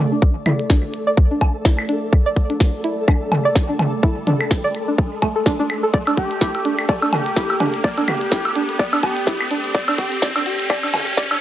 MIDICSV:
0, 0, Header, 1, 7, 480
1, 0, Start_track
1, 0, Tempo, 476190
1, 224, Time_signature, 4, 2, 24, 8
1, 11500, End_track
2, 0, Start_track
2, 0, Title_t, "Ambient pad"
2, 0, Program_c, 0, 92
2, 0, Note_on_c, 0, 57, 86
2, 0, Note_on_c, 0, 69, 82
2, 0, Note_on_c, 0, 74, 76
2, 0, Note_on_c, 0, 86, 88
2, 11500, Note_off_c, 0, 57, 0
2, 11500, Note_off_c, 0, 69, 0
2, 11500, Note_off_c, 0, 74, 0
2, 11500, Note_off_c, 0, 86, 0
2, 11500, End_track
3, 0, Start_track
3, 0, Title_t, "Synth texture"
3, 0, Program_c, 1, 99
3, 0, Note_on_c, 1, 69, 87
3, 11500, Note_off_c, 1, 69, 0
3, 11500, End_track
4, 0, Start_track
4, 0, Title_t, "Digital synth lead"
4, 0, Program_c, 2, 84
4, 6224, Note_on_c, 2, 67, 88
4, 6903, Note_off_c, 2, 67, 0
4, 7185, Note_on_c, 2, 67, 91
4, 7863, Note_off_c, 2, 67, 0
4, 8144, Note_on_c, 2, 67, 91
4, 8823, Note_off_c, 2, 67, 0
4, 9107, Note_on_c, 2, 67, 97
4, 9784, Note_off_c, 2, 67, 0
4, 10065, Note_on_c, 2, 67, 92
4, 10288, Note_off_c, 2, 67, 0
4, 10543, Note_on_c, 2, 67, 93
4, 10767, Note_off_c, 2, 67, 0
4, 11025, Note_on_c, 2, 67, 95
4, 11248, Note_off_c, 2, 67, 0
4, 11500, End_track
5, 0, Start_track
5, 0, Title_t, "Synth pluck"
5, 0, Program_c, 3, 84
5, 119, Note_on_c, 3, 62, 73
5, 162, Note_off_c, 3, 62, 0
5, 464, Note_on_c, 3, 64, 74
5, 501, Note_off_c, 3, 64, 0
5, 703, Note_on_c, 3, 62, 83
5, 759, Note_off_c, 3, 62, 0
5, 1079, Note_on_c, 3, 74, 103
5, 1108, Note_off_c, 3, 74, 0
5, 1319, Note_on_c, 3, 62, 79
5, 1362, Note_off_c, 3, 62, 0
5, 1664, Note_on_c, 3, 64, 83
5, 1701, Note_off_c, 3, 64, 0
5, 1903, Note_on_c, 3, 62, 77
5, 1959, Note_off_c, 3, 62, 0
5, 2279, Note_on_c, 3, 74, 100
5, 2308, Note_off_c, 3, 74, 0
5, 2518, Note_on_c, 3, 62, 79
5, 2562, Note_off_c, 3, 62, 0
5, 2864, Note_on_c, 3, 64, 80
5, 2901, Note_off_c, 3, 64, 0
5, 3103, Note_on_c, 3, 62, 80
5, 3160, Note_off_c, 3, 62, 0
5, 3480, Note_on_c, 3, 74, 103
5, 3508, Note_off_c, 3, 74, 0
5, 3720, Note_on_c, 3, 62, 77
5, 3763, Note_off_c, 3, 62, 0
5, 4063, Note_on_c, 3, 64, 83
5, 4101, Note_off_c, 3, 64, 0
5, 4303, Note_on_c, 3, 62, 75
5, 4360, Note_off_c, 3, 62, 0
5, 4679, Note_on_c, 3, 74, 105
5, 4708, Note_off_c, 3, 74, 0
5, 4919, Note_on_c, 3, 62, 77
5, 4962, Note_off_c, 3, 62, 0
5, 5264, Note_on_c, 3, 57, 104
5, 5301, Note_off_c, 3, 57, 0
5, 5400, Note_on_c, 3, 69, 79
5, 5428, Note_off_c, 3, 69, 0
5, 5503, Note_on_c, 3, 62, 98
5, 5560, Note_off_c, 3, 62, 0
5, 5639, Note_on_c, 3, 62, 100
5, 5668, Note_off_c, 3, 62, 0
5, 5879, Note_on_c, 3, 69, 75
5, 5899, Note_off_c, 3, 69, 0
5, 5983, Note_on_c, 3, 74, 91
5, 6021, Note_off_c, 3, 74, 0
5, 6120, Note_on_c, 3, 62, 71
5, 6163, Note_off_c, 3, 62, 0
5, 6464, Note_on_c, 3, 64, 77
5, 6501, Note_off_c, 3, 64, 0
5, 6703, Note_on_c, 3, 62, 74
5, 6759, Note_off_c, 3, 62, 0
5, 6943, Note_on_c, 3, 74, 93
5, 6981, Note_off_c, 3, 74, 0
5, 7079, Note_on_c, 3, 62, 72
5, 7122, Note_off_c, 3, 62, 0
5, 7424, Note_on_c, 3, 64, 75
5, 7461, Note_off_c, 3, 64, 0
5, 7664, Note_on_c, 3, 62, 74
5, 7720, Note_off_c, 3, 62, 0
5, 7905, Note_on_c, 3, 74, 95
5, 7942, Note_off_c, 3, 74, 0
5, 8040, Note_on_c, 3, 62, 72
5, 8083, Note_off_c, 3, 62, 0
5, 8385, Note_on_c, 3, 64, 80
5, 8422, Note_off_c, 3, 64, 0
5, 8624, Note_on_c, 3, 62, 75
5, 8680, Note_off_c, 3, 62, 0
5, 8863, Note_on_c, 3, 74, 100
5, 8901, Note_off_c, 3, 74, 0
5, 8999, Note_on_c, 3, 62, 75
5, 9042, Note_off_c, 3, 62, 0
5, 9343, Note_on_c, 3, 64, 81
5, 9381, Note_off_c, 3, 64, 0
5, 9584, Note_on_c, 3, 62, 75
5, 9640, Note_off_c, 3, 62, 0
5, 9824, Note_on_c, 3, 74, 99
5, 9861, Note_off_c, 3, 74, 0
5, 9961, Note_on_c, 3, 62, 77
5, 10003, Note_off_c, 3, 62, 0
5, 10305, Note_on_c, 3, 74, 102
5, 10342, Note_off_c, 3, 74, 0
5, 10441, Note_on_c, 3, 62, 78
5, 10483, Note_off_c, 3, 62, 0
5, 10784, Note_on_c, 3, 74, 103
5, 10821, Note_off_c, 3, 74, 0
5, 10920, Note_on_c, 3, 62, 78
5, 10963, Note_off_c, 3, 62, 0
5, 11264, Note_on_c, 3, 74, 100
5, 11301, Note_off_c, 3, 74, 0
5, 11400, Note_on_c, 3, 62, 76
5, 11443, Note_off_c, 3, 62, 0
5, 11500, End_track
6, 0, Start_track
6, 0, Title_t, "Riser"
6, 0, Program_c, 4, 103
6, 0, Note_on_c, 4, 60, 77
6, 11500, Note_off_c, 4, 60, 0
6, 11500, End_track
7, 0, Start_track
7, 0, Title_t, "Drums"
7, 223, Note_on_c, 9, 36, 123
7, 324, Note_off_c, 9, 36, 0
7, 463, Note_on_c, 9, 42, 92
7, 464, Note_on_c, 9, 47, 83
7, 464, Note_on_c, 9, 76, 61
7, 564, Note_off_c, 9, 42, 0
7, 565, Note_off_c, 9, 47, 0
7, 565, Note_off_c, 9, 76, 0
7, 600, Note_on_c, 9, 42, 36
7, 701, Note_off_c, 9, 42, 0
7, 703, Note_on_c, 9, 36, 116
7, 704, Note_on_c, 9, 38, 94
7, 804, Note_off_c, 9, 36, 0
7, 805, Note_off_c, 9, 38, 0
7, 944, Note_on_c, 9, 42, 93
7, 1045, Note_off_c, 9, 42, 0
7, 1183, Note_on_c, 9, 36, 119
7, 1284, Note_off_c, 9, 36, 0
7, 1423, Note_on_c, 9, 36, 64
7, 1424, Note_on_c, 9, 42, 91
7, 1424, Note_on_c, 9, 77, 82
7, 1524, Note_off_c, 9, 36, 0
7, 1525, Note_off_c, 9, 42, 0
7, 1525, Note_off_c, 9, 77, 0
7, 1664, Note_on_c, 9, 36, 125
7, 1665, Note_on_c, 9, 38, 92
7, 1764, Note_off_c, 9, 36, 0
7, 1766, Note_off_c, 9, 38, 0
7, 1800, Note_on_c, 9, 76, 65
7, 1901, Note_off_c, 9, 76, 0
7, 1905, Note_on_c, 9, 42, 96
7, 2006, Note_off_c, 9, 42, 0
7, 2144, Note_on_c, 9, 36, 122
7, 2244, Note_off_c, 9, 36, 0
7, 2384, Note_on_c, 9, 36, 62
7, 2385, Note_on_c, 9, 42, 96
7, 2484, Note_off_c, 9, 36, 0
7, 2486, Note_off_c, 9, 42, 0
7, 2520, Note_on_c, 9, 42, 38
7, 2621, Note_off_c, 9, 42, 0
7, 2624, Note_on_c, 9, 36, 122
7, 2624, Note_on_c, 9, 38, 95
7, 2724, Note_off_c, 9, 36, 0
7, 2725, Note_off_c, 9, 38, 0
7, 2864, Note_on_c, 9, 42, 94
7, 2965, Note_off_c, 9, 42, 0
7, 3104, Note_on_c, 9, 36, 123
7, 3104, Note_on_c, 9, 76, 62
7, 3104, Note_on_c, 9, 77, 60
7, 3204, Note_off_c, 9, 36, 0
7, 3205, Note_off_c, 9, 76, 0
7, 3205, Note_off_c, 9, 77, 0
7, 3344, Note_on_c, 9, 47, 79
7, 3344, Note_on_c, 9, 77, 82
7, 3345, Note_on_c, 9, 42, 96
7, 3445, Note_off_c, 9, 42, 0
7, 3445, Note_off_c, 9, 47, 0
7, 3445, Note_off_c, 9, 77, 0
7, 3584, Note_on_c, 9, 36, 125
7, 3585, Note_on_c, 9, 38, 94
7, 3684, Note_off_c, 9, 36, 0
7, 3686, Note_off_c, 9, 38, 0
7, 3824, Note_on_c, 9, 47, 78
7, 3824, Note_on_c, 9, 77, 60
7, 3825, Note_on_c, 9, 42, 96
7, 3925, Note_off_c, 9, 42, 0
7, 3925, Note_off_c, 9, 47, 0
7, 3925, Note_off_c, 9, 77, 0
7, 4064, Note_on_c, 9, 36, 123
7, 4165, Note_off_c, 9, 36, 0
7, 4305, Note_on_c, 9, 42, 92
7, 4305, Note_on_c, 9, 47, 76
7, 4406, Note_off_c, 9, 42, 0
7, 4406, Note_off_c, 9, 47, 0
7, 4441, Note_on_c, 9, 42, 36
7, 4441, Note_on_c, 9, 76, 62
7, 4542, Note_off_c, 9, 42, 0
7, 4542, Note_off_c, 9, 76, 0
7, 4544, Note_on_c, 9, 36, 123
7, 4545, Note_on_c, 9, 38, 90
7, 4645, Note_off_c, 9, 36, 0
7, 4645, Note_off_c, 9, 38, 0
7, 4785, Note_on_c, 9, 42, 93
7, 4886, Note_off_c, 9, 42, 0
7, 5024, Note_on_c, 9, 36, 124
7, 5125, Note_off_c, 9, 36, 0
7, 5264, Note_on_c, 9, 36, 66
7, 5264, Note_on_c, 9, 42, 94
7, 5264, Note_on_c, 9, 77, 83
7, 5365, Note_off_c, 9, 36, 0
7, 5365, Note_off_c, 9, 42, 0
7, 5365, Note_off_c, 9, 77, 0
7, 5504, Note_on_c, 9, 36, 123
7, 5504, Note_on_c, 9, 38, 90
7, 5605, Note_off_c, 9, 36, 0
7, 5605, Note_off_c, 9, 38, 0
7, 5744, Note_on_c, 9, 42, 93
7, 5744, Note_on_c, 9, 76, 64
7, 5845, Note_off_c, 9, 42, 0
7, 5845, Note_off_c, 9, 76, 0
7, 5984, Note_on_c, 9, 36, 118
7, 6085, Note_off_c, 9, 36, 0
7, 6120, Note_on_c, 9, 42, 40
7, 6121, Note_on_c, 9, 76, 75
7, 6221, Note_off_c, 9, 42, 0
7, 6222, Note_off_c, 9, 76, 0
7, 6224, Note_on_c, 9, 36, 62
7, 6225, Note_on_c, 9, 42, 90
7, 6325, Note_off_c, 9, 36, 0
7, 6325, Note_off_c, 9, 42, 0
7, 6360, Note_on_c, 9, 42, 47
7, 6460, Note_off_c, 9, 42, 0
7, 6464, Note_on_c, 9, 36, 116
7, 6464, Note_on_c, 9, 38, 89
7, 6565, Note_off_c, 9, 36, 0
7, 6565, Note_off_c, 9, 38, 0
7, 6600, Note_on_c, 9, 42, 39
7, 6601, Note_on_c, 9, 76, 38
7, 6701, Note_off_c, 9, 42, 0
7, 6702, Note_off_c, 9, 76, 0
7, 6704, Note_on_c, 9, 42, 91
7, 6805, Note_off_c, 9, 42, 0
7, 6840, Note_on_c, 9, 42, 50
7, 6840, Note_on_c, 9, 76, 64
7, 6941, Note_off_c, 9, 42, 0
7, 6941, Note_off_c, 9, 76, 0
7, 6944, Note_on_c, 9, 36, 121
7, 6944, Note_on_c, 9, 77, 55
7, 7044, Note_off_c, 9, 36, 0
7, 7045, Note_off_c, 9, 77, 0
7, 7080, Note_on_c, 9, 76, 75
7, 7181, Note_off_c, 9, 76, 0
7, 7184, Note_on_c, 9, 42, 93
7, 7184, Note_on_c, 9, 47, 74
7, 7184, Note_on_c, 9, 77, 78
7, 7285, Note_off_c, 9, 42, 0
7, 7285, Note_off_c, 9, 47, 0
7, 7285, Note_off_c, 9, 77, 0
7, 7320, Note_on_c, 9, 42, 52
7, 7421, Note_off_c, 9, 42, 0
7, 7424, Note_on_c, 9, 36, 119
7, 7424, Note_on_c, 9, 38, 84
7, 7525, Note_off_c, 9, 36, 0
7, 7525, Note_off_c, 9, 38, 0
7, 7560, Note_on_c, 9, 76, 78
7, 7661, Note_off_c, 9, 76, 0
7, 7664, Note_on_c, 9, 42, 91
7, 7664, Note_on_c, 9, 47, 75
7, 7664, Note_on_c, 9, 77, 56
7, 7765, Note_off_c, 9, 42, 0
7, 7765, Note_off_c, 9, 47, 0
7, 7765, Note_off_c, 9, 77, 0
7, 7800, Note_on_c, 9, 42, 52
7, 7901, Note_off_c, 9, 42, 0
7, 7904, Note_on_c, 9, 36, 115
7, 8005, Note_off_c, 9, 36, 0
7, 8040, Note_on_c, 9, 42, 43
7, 8041, Note_on_c, 9, 76, 39
7, 8140, Note_off_c, 9, 42, 0
7, 8142, Note_off_c, 9, 76, 0
7, 8143, Note_on_c, 9, 42, 89
7, 8145, Note_on_c, 9, 47, 73
7, 8145, Note_on_c, 9, 76, 69
7, 8244, Note_off_c, 9, 42, 0
7, 8246, Note_off_c, 9, 47, 0
7, 8246, Note_off_c, 9, 76, 0
7, 8279, Note_on_c, 9, 42, 52
7, 8380, Note_off_c, 9, 42, 0
7, 8384, Note_on_c, 9, 36, 111
7, 8384, Note_on_c, 9, 38, 90
7, 8484, Note_off_c, 9, 38, 0
7, 8485, Note_off_c, 9, 36, 0
7, 8520, Note_on_c, 9, 42, 40
7, 8522, Note_on_c, 9, 76, 76
7, 8620, Note_off_c, 9, 42, 0
7, 8622, Note_off_c, 9, 76, 0
7, 8624, Note_on_c, 9, 42, 88
7, 8725, Note_off_c, 9, 42, 0
7, 8759, Note_on_c, 9, 42, 52
7, 8860, Note_off_c, 9, 42, 0
7, 8864, Note_on_c, 9, 36, 113
7, 8965, Note_off_c, 9, 36, 0
7, 9001, Note_on_c, 9, 76, 81
7, 9102, Note_off_c, 9, 76, 0
7, 9104, Note_on_c, 9, 36, 61
7, 9104, Note_on_c, 9, 42, 87
7, 9106, Note_on_c, 9, 77, 77
7, 9205, Note_off_c, 9, 36, 0
7, 9205, Note_off_c, 9, 42, 0
7, 9207, Note_off_c, 9, 77, 0
7, 9240, Note_on_c, 9, 42, 53
7, 9340, Note_off_c, 9, 42, 0
7, 9344, Note_on_c, 9, 36, 117
7, 9344, Note_on_c, 9, 38, 88
7, 9445, Note_off_c, 9, 36, 0
7, 9445, Note_off_c, 9, 38, 0
7, 9481, Note_on_c, 9, 76, 70
7, 9582, Note_off_c, 9, 76, 0
7, 9584, Note_on_c, 9, 42, 91
7, 9684, Note_off_c, 9, 42, 0
7, 9719, Note_on_c, 9, 42, 52
7, 9820, Note_off_c, 9, 42, 0
7, 9824, Note_on_c, 9, 36, 118
7, 9925, Note_off_c, 9, 36, 0
7, 9960, Note_on_c, 9, 42, 45
7, 9960, Note_on_c, 9, 76, 82
7, 10061, Note_off_c, 9, 42, 0
7, 10061, Note_off_c, 9, 76, 0
7, 10064, Note_on_c, 9, 36, 59
7, 10064, Note_on_c, 9, 42, 89
7, 10165, Note_off_c, 9, 36, 0
7, 10165, Note_off_c, 9, 42, 0
7, 10200, Note_on_c, 9, 42, 53
7, 10301, Note_off_c, 9, 42, 0
7, 10304, Note_on_c, 9, 36, 109
7, 10305, Note_on_c, 9, 38, 91
7, 10405, Note_off_c, 9, 36, 0
7, 10406, Note_off_c, 9, 38, 0
7, 10440, Note_on_c, 9, 76, 82
7, 10441, Note_on_c, 9, 42, 43
7, 10541, Note_off_c, 9, 76, 0
7, 10542, Note_off_c, 9, 42, 0
7, 10545, Note_on_c, 9, 42, 88
7, 10646, Note_off_c, 9, 42, 0
7, 10681, Note_on_c, 9, 42, 54
7, 10781, Note_off_c, 9, 42, 0
7, 10784, Note_on_c, 9, 36, 115
7, 10785, Note_on_c, 9, 76, 69
7, 10785, Note_on_c, 9, 77, 52
7, 10885, Note_off_c, 9, 36, 0
7, 10886, Note_off_c, 9, 76, 0
7, 10886, Note_off_c, 9, 77, 0
7, 10921, Note_on_c, 9, 76, 41
7, 11021, Note_off_c, 9, 76, 0
7, 11024, Note_on_c, 9, 42, 88
7, 11025, Note_on_c, 9, 47, 78
7, 11025, Note_on_c, 9, 77, 76
7, 11125, Note_off_c, 9, 42, 0
7, 11125, Note_off_c, 9, 47, 0
7, 11125, Note_off_c, 9, 77, 0
7, 11161, Note_on_c, 9, 42, 57
7, 11261, Note_off_c, 9, 42, 0
7, 11264, Note_on_c, 9, 36, 116
7, 11265, Note_on_c, 9, 38, 92
7, 11365, Note_off_c, 9, 36, 0
7, 11366, Note_off_c, 9, 38, 0
7, 11401, Note_on_c, 9, 76, 82
7, 11500, Note_off_c, 9, 76, 0
7, 11500, End_track
0, 0, End_of_file